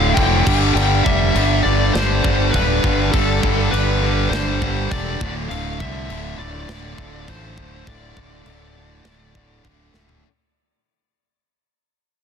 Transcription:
0.00 0.14 D1 medium
0.00 0.15 D2 medium
0.00 0.16 A2 medium
0.00 0.17 D3 medium
0.00 0.43 D3 medium
0.00 0.43 F3 medium
0.00 0.43 D4 medium
0.00 0.43 F4 medium
0.00 0.18 F5 loud
0.14 0.45 F1 loud
0.14 0.45 D2 medium
0.14 0.45 A2 loud
0.14 0.57 G5 medium
0.14 kick medium
0.14 crash medium
0.18 0.46 D3 medium
0.46 0.75 G1 loud
0.46 0.75 G2 medium
0.46 0.75 D3 medium
0.46 0.76 G3 loud
0.46 5.17 G3 medium
0.46 5.18 D4 medium
0.46 5.18 A4 medium
0.46 5.17 D5 medium
0.46 kick loud
0.46 crash loud
0.74 1.04 G1 loud
0.74 1.05 G2 medium
0.74 1.05 D3 loud
0.74 1.06 G3 loud
0.74 1.06 G5 loud
0.74 crash medium
1.04 1.34 F1 medium
1.04 1.34 G2 medium
1.04 1.34 D3 medium
1.04 1.36 G3 loud
1.04 1.63 E5 loud
1.04 kick medium
1.35 1.64 G1 medium
1.35 1.63 G2 medium
1.35 1.64 D3 loud
1.35 1.64 G3 loud
1.35 crash medium
1.63 1.94 G1 medium
1.63 1.93 G2 medium
1.63 1.94 D3 medium
1.63 1.94 G3 loud
1.63 1.92 D5 loud
1.93 2.23 G1 loud
1.93 2.22 G2 medium
1.93 2.23 D3 loud
1.93 2.24 G3 loud
1.93 2.51 C5 medium
1.93 snare loud
1.93 crash medium
2.23 2.53 G1 medium
2.23 2.52 G2 loud
2.23 2.53 D3 medium
2.23 2.54 G3 loud
2.23 kick medium
2.51 2.83 D1 loud
2.51 2.82 G2 medium
2.51 2.83 D3 medium
2.51 2.84 G3 medium
2.51 3.12 B4 medium
2.51 kick medium
2.51 crash medium
2.83 3.12 G1 medium
2.83 3.12 G2 medium
2.83 3.12 D3 medium
2.83 3.13 G3 medium
2.83 kick medium
3.12 3.42 G1 medium
3.12 3.42 G2 medium
3.12 3.43 D3 medium
3.12 3.44 G3 loud
3.12 3.71 A4 medium
3.12 kick loud
3.12 crash medium
3.43 3.71 G1 medium
3.43 3.71 G2 medium
3.43 3.72 D3 medium
3.43 3.73 G3 medium
3.43 kick loud
3.71 4.29 G1 medium
3.71 4.01 G2 loud
3.71 4.02 D3 medium
3.71 4.03 G3 loud
3.71 4.30 B4 medium
3.71 crash medium
4.02 4.31 G2 medium
4.02 4.32 D3 medium
4.02 4.32 G3 loud
4.30 4.87 G1 loud
4.30 4.61 G2 medium
4.30 4.62 D3 loud
4.30 4.62 G3 loud
4.30 4.92 C5 medium
4.30 snare loud
4.30 crash medium
4.62 4.91 G2 medium
4.62 4.91 D3 medium
4.62 4.92 G3 loud
4.62 kick medium
4.91 5.19 E1 loud
4.91 5.19 G2 medium
4.91 5.20 D3 medium
4.91 5.20 G3 loud
4.91 5.32 D5 medium
4.91 kick medium
4.91 crash medium
5.21 5.49 D1 loud
5.21 5.50 D2 loud
5.21 5.50 A2 loud
5.21 10.20 D3 medium
5.21 5.52 D3 loud
5.21 10.20 A3 medium
5.21 7.55 E4 medium
5.21 10.20 F4 medium
5.21 kick loud
5.49 5.79 D1 medium
5.49 5.80 D2 loud
5.49 5.80 A2 loud
5.49 5.81 D3 loud
5.49 5.79 F5 loud
5.49 crash medium
5.79 6.08 C2 medium
5.79 6.10 D2 medium
5.79 6.10 A2 loud
5.79 6.11 D3 medium
5.79 6.35 E5 loud
5.79 kick medium
6.09 6.38 D1 loud
6.09 6.39 D2 medium
6.09 6.39 A2 loud
6.09 6.41 D3 loud
6.09 crash medium
6.38 6.67 D1 medium
6.38 6.68 D2 loud
6.38 6.68 A2 medium
6.38 6.70 D3 loud
6.38 7.30 D5 loud
6.69 6.97 D1 loud
6.69 6.98 D2 medium
6.69 6.97 A2 medium
6.69 6.99 D3 loud
6.69 snare loud
6.69 crash medium
6.98 7.26 D1 medium
6.98 7.28 D2 medium
6.98 7.28 A2 medium
6.98 7.29 D3 medium
6.98 kick medium
7.28 7.56 A1 medium
7.28 7.58 D2 medium
7.28 7.58 A2 medium
7.28 7.59 D3 loud
7.28 7.89 C5 medium
7.28 kick medium
7.28 crash medium
7.58 7.86 D1 medium
7.58 7.87 D2 medium
7.58 7.87 A2 medium
7.58 7.88 D3 loud
7.58 10.22 D4 medium
7.58 kick loud
7.87 8.15 D1 medium
7.87 8.16 D2 loud
7.87 8.16 A2 loud
7.87 8.17 D3 loud
7.87 9.61 D5 loud
7.87 kick loud
7.87 crash medium
8.17 8.45 D1 medium
8.17 8.45 D2 medium
8.17 8.46 A2 medium
8.17 8.47 D3 medium
8.17 kick medium
8.46 9.02 D1 loud
8.46 8.75 D2 medium
8.46 8.76 A2 medium
8.46 8.77 D3 loud
8.46 crash medium
8.77 9.05 D2 medium
8.77 9.06 A2 loud
8.77 9.06 D3 loud
9.05 9.61 D1 loud
9.05 9.35 D2 loud
9.05 9.35 A2 loud
9.05 9.36 D3 loud
9.05 snare loud
9.05 crash medium
9.35 9.64 D2 medium
9.35 9.65 A2 medium
9.35 9.66 D3 medium
9.35 kick medium
9.65 9.93 D1 medium
9.65 9.94 D2 medium
9.65 9.95 A2 medium
9.65 9.95 D3 medium
9.65 kick medium
9.65 crash medium
9.94 10.22 D1 medium
9.94 10.23 D2 medium
9.94 10.23 A2 loud
9.94 10.23 D3 loud
9.94 snare medium
10.09 floor tom medium

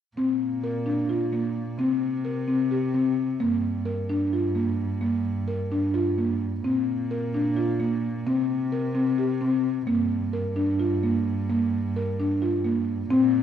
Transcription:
0.17 1.80 A#2 medium
0.17 0.50 C4 medium
0.64 0.80 A#4 medium
0.86 1.02 D4 medium
1.09 1.26 F4 medium
1.33 1.65 A#3 medium
1.79 3.43 C3 medium
1.79 2.11 C4 medium
2.25 2.41 A#4 medium
2.48 2.64 C4 medium
2.71 2.88 G4 medium
2.94 3.27 C4 medium
3.40 6.66 G2 medium
3.40 3.73 A#3 medium
3.85 4.02 A#4 medium
4.10 4.26 D4 medium
4.33 4.49 F4 medium
4.55 4.88 A#3 medium
5.01 5.34 A#3 medium
5.48 5.64 A#4 medium
5.72 5.88 D4 medium
5.94 6.11 F4 medium
6.18 6.51 A#3 medium
6.64 8.28 A#2 medium
6.64 6.97 C4 medium
7.11 7.27 A#4 medium
7.34 7.50 D4 medium
7.57 7.73 F4 medium
7.80 8.12 A#3 medium
8.26 9.90 C3 medium
8.26 8.59 C4 medium
8.72 8.89 A#4 medium
8.95 9.11 C4 medium
9.18 9.35 G4 medium
9.41 9.74 C4 medium
9.87 13.07 G2 medium
9.87 10.20 A#3 medium
10.33 10.50 A#4 medium
10.56 10.73 D4 medium
10.80 10.96 F4 medium
11.03 11.36 A#3 medium
11.50 11.82 A#3 medium
11.96 12.12 A#4 medium
12.20 12.36 D4 medium
12.42 12.58 F4 medium
12.64 12.97 A#3 medium
13.10 13.43 A#2 medium
13.10 13.43 C4 medium

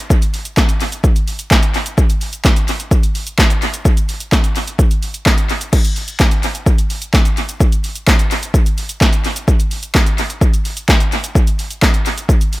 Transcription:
0.10 kick loud
0.10 shaker medium
0.22 closed hi-hat medium
0.22 shaker medium
0.34 open hi-hat medium
0.34 shaker medium
0.45 closed hi-hat medium
0.45 shaker medium
0.57 kick loud
0.57 snare medium
0.57 clap loud
0.57 shaker medium
0.69 closed hi-hat medium
0.69 shaker medium
0.81 open hi-hat medium
0.81 shaker medium
0.92 closed hi-hat medium
0.92 shaker medium
1.04 kick loud
1.04 shaker medium
1.16 closed hi-hat medium
1.16 shaker medium
1.28 open hi-hat medium
1.28 shaker medium
1.39 closed hi-hat medium
1.39 shaker medium
1.51 kick loud
1.51 snare loud
1.51 clap loud
1.51 shaker medium
1.63 closed hi-hat medium
1.63 shaker medium
1.74 open hi-hat medium
1.74 shaker soft
1.86 closed hi-hat medium
1.86 shaker medium
1.98 kick loud
1.98 shaker medium
2.10 closed hi-hat medium
2.10 shaker medium
2.21 open hi-hat medium
2.21 shaker medium
2.33 closed hi-hat medium
2.33 shaker medium
2.45 kick loud
2.45 snare loud
2.45 clap loud
2.45 shaker medium
2.56 closed hi-hat medium
2.56 shaker medium
2.68 open hi-hat medium
2.68 shaker medium
2.80 closed hi-hat medium
2.80 shaker medium
2.91 kick loud
2.91 shaker medium
3.03 closed hi-hat medium
3.03 shaker medium
3.15 open hi-hat medium
3.15 shaker medium
3.27 closed hi-hat medium
3.27 shaker medium
3.39 kick loud
3.39 snare loud
3.39 clap loud
3.39 shaker medium
3.50 closed hi-hat medium
3.50 shaker medium
3.62 open hi-hat medium
3.62 shaker soft
3.74 closed hi-hat medium
3.74 shaker medium
3.85 kick loud
3.85 shaker medium
3.97 closed hi-hat medium
3.97 shaker medium
4.09 open hi-hat medium
4.09 shaker medium
4.20 closed hi-hat medium
4.20 shaker medium
4.32 kick loud
4.32 snare medium
4.32 clap loud
4.32 shaker medium
4.44 closed hi-hat medium
4.44 shaker medium
4.56 open hi-hat medium
4.56 shaker medium
4.67 closed hi-hat medium
4.67 shaker medium
4.79 kick loud
4.79 shaker medium
4.91 closed hi-hat medium
4.91 shaker medium
5.03 open hi-hat medium
5.03 shaker medium
5.14 closed hi-hat medium
5.14 shaker medium
5.26 kick loud
5.26 snare loud
5.26 clap loud
5.26 shaker medium
5.38 closed hi-hat medium
5.38 shaker medium
5.49 open hi-hat medium
5.49 shaker soft
5.61 closed hi-hat medium
5.61 shaker medium
5.73 kick loud
5.73 crash loud
5.73 shaker medium
5.85 closed hi-hat medium
5.85 shaker medium
5.96 open hi-hat medium
5.96 shaker soft
6.08 closed hi-hat medium
6.08 shaker medium
6.20 kick loud
6.20 snare loud
6.20 clap loud
6.20 shaker medium
6.31 closed hi-hat medium
6.31 shaker medium
6.43 open hi-hat medium
6.43 shaker medium
6.55 closed hi-hat medium
6.55 shaker medium
6.66 kick loud
6.66 shaker medium
6.78 closed hi-hat medium
6.78 shaker medium
6.90 open hi-hat medium
6.90 shaker medium
7.02 closed hi-hat medium
7.02 shaker medium
7.14 kick loud
7.14 snare loud
7.14 clap loud
7.14 shaker medium
7.25 closed hi-hat medium
7.25 shaker medium
7.37 open hi-hat medium
7.37 shaker soft
7.49 closed hi-hat medium
7.49 shaker medium
7.60 kick loud
7.60 shaker medium
7.72 closed hi-hat medium
7.72 shaker medium
7.84 open hi-hat medium
7.84 shaker soft
7.95 closed hi-hat medium
7.95 shaker medium
8.07 kick loud
8.07 snare loud
8.07 clap loud
8.07 shaker medium
8.19 closed hi-hat medium
8.19 shaker medium
8.31 open hi-hat medium
8.31 shaker medium
8.43 closed hi-hat medium
8.43 shaker medium
8.54 kick loud
8.54 shaker medium
8.66 closed hi-hat medium
8.66 shaker medium
8.78 open hi-hat medium
8.78 shaker medium
8.89 closed hi-hat medium
8.89 shaker medium
9.01 kick loud
9.01 snare loud
9.01 clap loud
9.01 shaker medium
9.13 closed hi-hat medium
9.13 shaker medium
9.24 open hi-hat medium
9.24 shaker soft
9.36 closed hi-hat medium
9.36 shaker medium
9.48 kick loud
9.48 shaker medium
9.60 closed hi-hat medium
9.60 shaker medium
9.71 open hi-hat medium
9.71 shaker soft
9.83 closed hi-hat medium
9.83 shaker medium
9.95 kick loud
9.95 snare loud
9.95 clap loud
9.95 shaker medium
10.06 closed hi-hat medium
10.06 shaker medium
10.18 open hi-hat medium
10.18 shaker medium
10.30 closed hi-hat medium
10.30 shaker medium
10.41 kick loud
10.41 shaker medium
10.54 closed hi-hat medium
10.54 shaker medium
10.65 open hi-hat medium
10.65 shaker medium
10.77 closed hi-hat medium
10.77 shaker medium
10.89 kick loud
10.89 snare loud
10.89 clap loud
10.89 shaker medium
11.00 closed hi-hat medium
11.00 shaker medium
11.12 open hi-hat medium
11.12 shaker soft
11.24 closed hi-hat medium
11.24 shaker medium
11.35 kick loud
11.35 shaker medium
11.47 closed hi-hat medium
11.47 shaker medium
11.59 open hi-hat medium
11.59 shaker soft
11.71 closed hi-hat medium
11.71 shaker medium
11.82 kick loud
11.82 snare loud
11.82 clap loud
11.82 shaker medium
11.94 closed hi-hat medium
11.94 shaker medium
12.06 open hi-hat medium
12.06 shaker medium
12.18 closed hi-hat medium
12.18 shaker medium
12.29 kick loud
12.29 shaker medium
12.41 closed hi-hat medium
12.41 shaker medium
12.53 open hi-hat medium
12.53 shaker medium

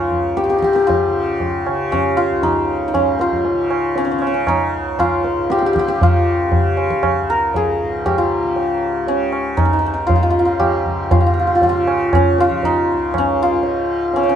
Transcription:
0.00 2.30 C#2 medium
0.00 0.46 G#2 medium
0.00 1.09 C#3 medium
0.00 1.92 C#4 medium
0.00 2.43 D#4 medium
0.00 0.87 F4 medium
0.00 0.36 G4 medium
0.12 tabla ge soft
0.37 0.43 G4 medium
0.37 tabla te medium
0.44 2.93 G#2 medium
0.44 0.49 G4 medium
0.49 0.58 G4 medium
0.49 tabla te medium
0.58 0.64 G4 medium
0.62 0.73 G4 medium
0.62 tabla ke medium
0.73 3.88 G4 medium
0.73 tabla te medium
0.87 2.17 F4 medium
0.87 tabla tin medium
0.87 tabla ge medium
1.09 1.68 C#3 medium
1.40 tabla tin medium
1.40 tabla ge medium
1.66 3.54 C#3 medium
1.66 tabla na medium
1.92 2.94 C#4 medium
1.92 tabla na medium
1.92 tabla ge medium
2.17 3.21 F4 medium
2.31 4.75 C#2 medium
2.42 2.87 D#4 medium
2.42 tabla tin medium
2.42 tabla ge medium
2.88 4.48 D#4 medium
2.93 5.37 G#2 soft
2.93 3.97 C#4 medium
2.93 tabla na medium
2.93 tabla ge medium
3.19 4.99 F4 medium
3.19 tabla te medium
3.32 tabla ge soft
3.45 tabla tin medium
3.54 4.14 C#3 medium
3.71 tabla na medium
3.96 4.04 C#4 medium
3.96 tabla tin medium
4.05 4.11 C#4 medium
4.11 5.97 C#3 medium
4.11 4.18 C#4 medium
4.18 4.26 C#4 soft
4.18 tabla na medium
4.27 4.34 C#4 medium
4.34 8.20 C#4 soft
4.47 8.08 D#4 medium
4.47 tabla na medium
4.47 tabla ge medium
4.75 7.21 C#2 medium
4.99 6.03 F4 medium
4.99 tabla na medium
4.99 tabla ge medium
5.24 tabla te medium
5.37 7.81 G#2 medium
5.50 5.58 G4 medium
5.50 tabla te medium
5.59 5.66 G4 medium
5.59 tabla te medium
5.66 5.73 G4 medium
5.73 5.79 G4 medium
5.73 tabla ke medium
5.79 5.88 G4 medium
5.88 7.62 G4 medium
5.88 tabla te medium
5.97 6.59 C#3 medium
6.01 8.18 F4 medium
6.01 tabla tin medium
6.01 tabla ge medium
6.52 tabla tin medium
6.52 tabla ge medium
6.59 8.44 C#3 medium
6.77 tabla na medium
6.91 tabla ke medium
7.03 tabla na medium
7.03 tabla ge medium
7.22 9.66 C#2 medium
7.30 10.14 A#4 medium
7.54 8.12 G#4 medium
7.54 tabla tin medium
7.54 tabla ge medium
7.82 10.28 G#2 medium
8.06 10.59 G4 medium
8.06 tabla na medium
8.06 tabla ge medium
8.18 10.06 F4 medium
8.44 9.06 C#3 medium
8.56 tabla tin medium
9.06 10.89 C#3 medium
9.06 12.14 C#4 medium
9.06 tabla tin medium
9.33 tabla na soft
9.57 9.65 D#4 medium
9.57 tabla na medium
9.57 tabla ge medium
9.65 12.93 C#2 medium
9.65 9.73 D#4 medium
9.73 9.79 D#4 medium
9.79 9.86 D#4 medium
9.86 9.93 D#4 medium
9.94 12.65 D#4 medium
10.07 10.15 F4 medium
10.07 tabla tin medium
10.07 tabla ge medium
10.16 10.22 F4 medium
10.23 10.30 F4 medium
10.29 11.11 G#2 medium
10.29 10.39 F4 medium
10.39 10.45 F4 medium
10.45 11.11 F4 medium
10.59 13.74 G4 medium
10.59 tabla na medium
10.59 tabla ge medium
10.86 11.72 C#3 medium
10.86 tabla ge soft
11.11 13.54 G#2 medium
11.11 11.20 F4 medium
11.11 tabla tin medium
11.11 tabla ge medium
11.21 11.26 F4 medium
11.26 11.33 F4 medium
11.34 11.39 F4 soft
11.39 11.47 F4 medium
11.47 11.55 F4 soft
11.55 11.62 F4 medium
11.62 11.69 F4 medium
11.62 tabla tin medium
11.62 tabla ge medium
11.69 12.33 C#3 medium
11.69 12.40 F4 medium
11.87 tabla na medium
12.13 13.18 C#4 medium
12.13 tabla na medium
12.13 tabla ge medium
12.33 14.13 C#3 medium
12.38 13.42 F4 medium
12.38 tabla te medium
12.51 tabla ge medium
12.63 14.36 D#4 medium
12.63 tabla tin medium
12.63 tabla ge medium
12.94 14.36 C#2 medium
13.14 tabla na medium
13.14 tabla ge medium
13.18 14.16 C#4 medium
13.42 14.36 F4 medium
13.54 14.36 G#2 medium
13.63 tabla tin medium
14.14 14.36 C#3 medium
14.14 14.23 C#4 medium
14.14 tabla tin medium
14.23 14.29 C#4 medium
14.29 14.36 C#4 medium

